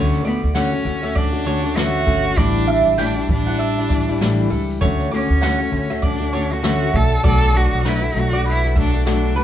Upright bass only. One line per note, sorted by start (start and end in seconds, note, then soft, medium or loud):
0.00 0.39 D2 loud
0.43 0.82 D2 loud
0.85 2.03 D2 medium
2.07 2.35 G1 loud
2.37 2.82 A1 loud
2.86 3.25 A1 medium
3.29 4.46 A1 medium
4.50 4.78 C#2 medium
4.82 5.26 D2 loud
5.29 5.69 D2 medium
5.73 6.90 D2 medium
6.94 7.22 B1 loud
7.24 7.69 B1 loud
7.72 8.12 B1 medium
8.14 9.36 B1 loud
9.36 9.44 C#2 medium